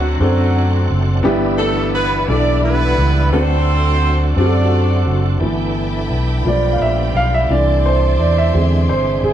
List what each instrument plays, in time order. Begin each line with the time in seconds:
Already playing: fingered electric bass D2, grand piano D3 C4 D4 F#4 A4, horn section F#3 F#4, tonewheel organ F#3 A3 C4 D4 F#5
0.20 fingered electric bass F#2, horn section F#3 A3 C4 F#4, grand piano C4 D4 F#4 A4
0.90 fingered electric bass F#1
1.23 fingered electric bass G1, grand piano G2 B3 D4 E4 G4, tonewheel organ E3 G3 B3 D4 E4
1.59 horn section A3 A4
1.94 horn section B3 B4
2.28 fingered electric bass B1, grand piano B3 D4 E4 A4, horn section D4 D5
2.64 horn section B3 D4 E4 B4
2.98 fingered electric bass C#2
3.32 fingered electric bass D2, grand piano D3 C4 D4 F#4 A4, tonewheel organ F#3 A3 C4 F#4, horn section C4 F#4 A4 C5
4.37 fingered electric bass F#2, grand piano C4 D4 F#4 G4, horn section D4 F#4 A4 D5
4.45 grand piano A4
5.06 fingered electric bass F#1
5.39 fingered electric bass G1, tonewheel organ E3 A3 B3 D4 G5, grand piano E3 A3 B3, string section E5 G5 A5 B5
6.10 fingered electric bass B1
6.45 fingered electric bass B1, grand piano F3 A3 B3 D5, tonewheel organ F3 G3, string section F4 D5
6.73 grand piano F5
6.80 fingered electric bass A#1, grand piano E5
7.14 fingered electric bass B1, grand piano F5
7.34 grand piano E5
7.49 fingered electric bass C2, tonewheel organ C3 E3 A3, grand piano E3 A3 D4 D5, string section E5 A5 C6
7.86 grand piano C5
8.19 fingered electric bass E2, grand piano D5
8.38 grand piano E5
8.54 fingered electric bass E2, grand piano D3 G#3 C4, tonewheel organ G#3, string section G#4
8.89 fingered electric bass G1, grand piano C5
9.23 fingered electric bass G#1, grand piano G#4